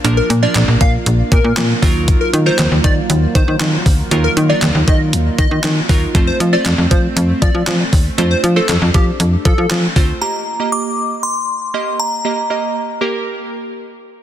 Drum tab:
HH |xxxxxxxo|xxxxxxxo|xxxxxxxo|xxxxxxxo|
CP |--x---x-|--x---x-|--x---x-|--x---x-|
SD |--o---o-|--o---o-|--o---o-|--o---o-|
BD |---o-o-o|o--o-o-o|---o-o-o|o--o-o-o|

HH |xxxxxxxo|--------|--------|
CP |--x---x-|--------|--------|
SD |--o---o-|--------|--------|
BD |---o-o-o|--------|--------|